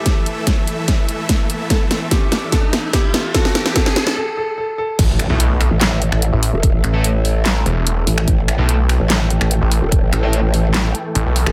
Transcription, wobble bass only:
\new Staff \with { instrumentName = "Wobble bass" } { \clef bass \time 4/4 \key c \major \tempo 4 = 146 r1 | r1 | r1 | a,,8. r4 a,,4 a,,8 r8 e,,16~ |
e,,16 a,,16 a,,2 r4 a,,8 | a,,8. r4 a,,4 a,,8 r8 e,,16~ | e,,16 a,,16 a,,2 r4 r16 g,,16 | }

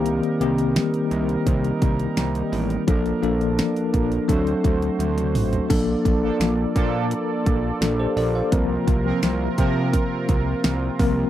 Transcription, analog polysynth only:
\new Staff \with { instrumentName = "Analog polysynth" } { \time 4/4 \key bes \major \tempo 4 = 85 <g ees' bes'>1 | <f d' bes'>2 <a fis' c''>2 | r8. <f d' a'>16 r8 <f d' a'>8 r2 | r8. <f c' bes'>16 r8 <f c' bes'>8 r2 | }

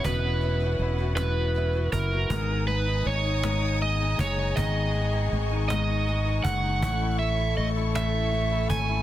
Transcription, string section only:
\new Staff \with { instrumentName = "String section" } { \time 6/8 \key gis \minor \tempo 4. = 53 << { r2. | dis'''2. | cis'''2.~ | cis'''2. | } \\ { <b e' fis''>2. | <b gis'' ais''>2.~ | <b gis'' ais''>2. | <e' a' cis''>2. | } >> }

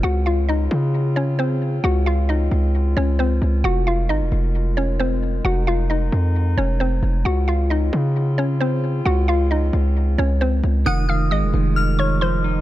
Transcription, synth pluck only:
\new Staff \with { instrumentName = "Synth pluck" } { \time 4/4 \key f \phrygian \tempo 4 = 133 <ges' ges''>8 <f' f''>8 <ees' ees''>4 r8 <des' des''>8 <c' c''>4 | <ges' ges''>8 <f' f''>8 <ees' ees''>4 r8 <des' des''>8 <c' c''>4 | <ges' ges''>8 <f' f''>8 <ees' ees''>4 r8 <des' des''>8 <c' c''>4 | <ges' ges''>8 <f' f''>8 <ees' ees''>4 r8 <des' des''>8 <c' c''>4 |
<ges' ges''>8 <f' f''>8 <ees' ees''>4 r8 <des' des''>8 <c' c''>4 | <ges' ges''>8 <f' f''>8 <ees' ees''>4 r8 <des' des''>8 <c' c''>4 | <ges'' ges'''>8 <f'' f'''>8 <ees'' ees'''>4 r8 <des'' des'''>8 <c'' c'''>4 | }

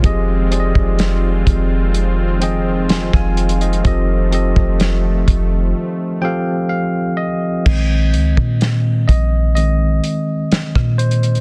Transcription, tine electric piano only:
\new Staff \with { instrumentName = "Tine electric piano" } { \time 4/4 \key f \minor \tempo 4 = 63 << { r2. <aes'' c'''>16 <f'' aes''>8 <c'' ees''>16~ | <c'' ees''>16 r2 r16 g''8 f''8 ees''8~ | ees''4. ees''8 ees''4. c''8 | } \\ { <f c' g' aes' ees''>8 <f c' g' aes' d'' ees''>2 <f c' aes' ees'' g''>4. | <f c' g' a' ees''>8 <f c' g' a' ees''>2 <f c' g' a' f''>4. | <ees c'>2 <ees aes c'>8 r4. | } >> }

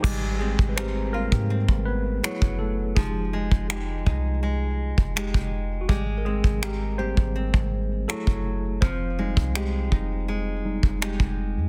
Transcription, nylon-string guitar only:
\new Staff \with { instrumentName = "Nylon-string guitar" } { \time 4/4 \key aes \major \tempo 4 = 82 aes8 c'8 <c' g' bes'>8 f'16 g'16 c'4 ges4 | f8 aes8 <aes ees' g'>8 ees'8 aes4 <aes ees' g'>4 | aes8 c'8 <c' g' bes'>8 g'8 c'4 ges4 | f8 aes8 <aes ees' g'>8 ees'8 aes4 <aes ees' g'>4 | }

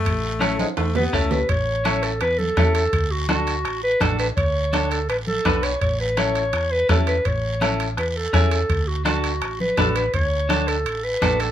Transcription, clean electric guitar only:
\new Staff \with { instrumentName = "Clean electric guitar" } { \time 4/4 \key a \major \tempo 4 = 166 r4 <cis' e' a'>8 r4. <cis' e' a'>8 r8 | r4 <cis' e' a'>8 r4. <cis' e' a'>8 r8 | r4 <d' fis' a'>8 r4. <d' fis' a'>8 r8 | r4 <d' fis' a'>8 r4. <d' fis' b'>8 r8 |
r4 <cis' e' a'>8 r4. <cis' e' a'>8 r8 | r4 <cis' e' a'>8 r4. <cis' e' gis'>8 r8 | r4 <d' fis' a'>8 r4. <d' fis' b'>8 r8 | r4 <d' fis' a'>8 r4. <d' fis' a'>8 r8 | }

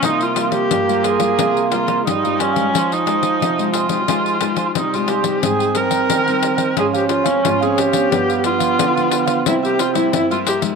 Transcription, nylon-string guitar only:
\new Staff \with { instrumentName = "Nylon-string guitar" } { \time 4/4 \key f \minor \tempo 4 = 89 << { <g bes f'>8 <g bes f'>8. <g bes f'>8 <g bes f'>16 <g bes f'>8 <g bes f'>8 r16 <g bes f'>8 <aes ees' g'>16~ | <aes ees' g'>8 <aes ees' g'>8 r16 <aes ees' g'>8 <aes ees' g'>16 <aes ees' g'>8 <aes ees' g'>8. <aes ees' g'>8 <g c' ees'>16~ | <g c' ees'>8 <g c' ees'>8. <g c' ees'>8. <f des'>8. <f c' des'>8 <f c' des'>8 <f b d'>16~ | <f b d'>8 <f b d'>8. <f b d'>8. <g bes e'>8 r16 <g bes e'>8 <g bes e'>8 <f aes ees'>16 | } \\ { c4 g,4 c4 g,4 | f4 c4 f4 c4 | aes,4 ees4 aes,4 aes,4 | g,4 d4 c4 g,4 | } >> }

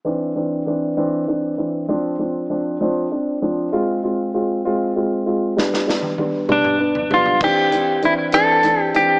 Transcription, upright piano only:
\new Staff \with { instrumentName = "Upright piano" } { \time 6/8 \key c \major \tempo 4. = 65 <e c' d'>8 <e c' d'>8 <e c' d'>8 <e c' d'>8 <e c' d'>8 <e c' d'>8 | <f c' d'>8 <f c' d'>8 <f c' d'>8 <f c' d'>8 <c' d'>8 <f c' d'>8 | <aes c' f'>8 <aes c' f'>8 <aes c' f'>8 <aes c' f'>8 <aes c' f'>8 <aes c' f'>8 | <g b d'>8 <g b d'>8 <g b d'>8 <g b d'>8 <b d'>8 <g b d'>8 |
<e c' d'>8 <e c' d'>8 <e c' d'>8 <e c' d'>8 <e c' d'>8 <e c' d'>8 | }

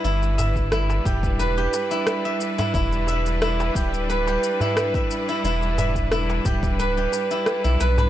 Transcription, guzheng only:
\new Staff \with { instrumentName = "Guzheng" } { \time 4/4 \key e \minor \tempo 4 = 89 e'16 r16 e''8 e'16 r16 g'16 r16 b'16 g'8 e'16 r16 e''8 e'16 | e'16 r16 e''8 e'16 r16 g'16 r16 b'16 g'8 e'16 r16 e''8 e'16 | e'16 r16 e''8 e'16 r16 g'16 r16 b'16 g'16 r16 e'16 r16 e'16 b'16 b'16 | }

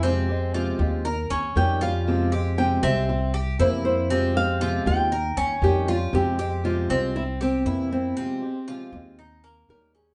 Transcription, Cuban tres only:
\new Staff \with { instrumentName = "Cuban tres" } { \time 4/4 \key f \minor \tempo 4 = 118 c'4 f'4 bes'8 des'4 f'8~ | f'8 g'4 c'4 g'8 e'4 | c'4 f'4 bes'8 des'4 f'8 | r8 g'4 c'4 g'8 e'4 |
c'4 f'4 ees'8 bes4 des'8 | }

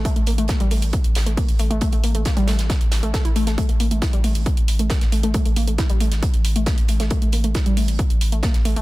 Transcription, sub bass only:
\new Staff \with { instrumentName = "Sub bass" } { \clef bass \time 4/4 \key c \mixolydian \tempo 4 = 136 r16 a,,16 a,,16 a,,16 r16 a,,16 a,,16 a,,16 r16 a,,16 a,,16 a,,16 r16 a,,16 a,,16 a,,16 | r16 a,,16 a,,16 a,,16 r16 a,,16 a,,16 a,,16 r16 a,,16 a,,16 a,,16 r16 a,,16 a,,16 a,,16 | r16 a,,16 a,,16 a,,16 r16 a,,16 a,,16 a,,16 r16 a,,16 a,,16 a,,16 r16 a,,16 a,,16 a,,16 | r16 a,,16 a,,16 a,,16 r16 a,,16 a,,16 a,,16 r16 a,,16 a,,16 a,,16 r16 a,,16 a,,16 a,,16 |
r16 a,,16 a,,16 a,,16 r16 a,,16 a,,16 a,,16 r16 a,,16 a,,16 a,,16 r16 a,,16 a,,16 a,,16 | }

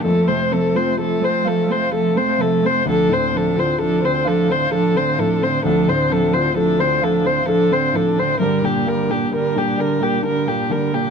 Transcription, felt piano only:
\new Staff \with { instrumentName = "Felt piano" } { \time 3/4 \key d \minor \tempo 4 = 65 f,16 c16 c'16 f'16 a'16 c''16 f''16 c''16 a'16 c'16 c16 c'16 | d,16 a,16 c'16 f'16 a'16 c''16 f''16 c''16 a'16 c'16 a,16 c'16 | d,16 a,16 c'16 f'16 a'16 c''16 f''16 c''16 a'16 c'16 a,16 c'16 | g,16 d16 bes16 d'16 bes'16 d'16 d''16 bes'16 d'16 bes16 d16 bes16 | }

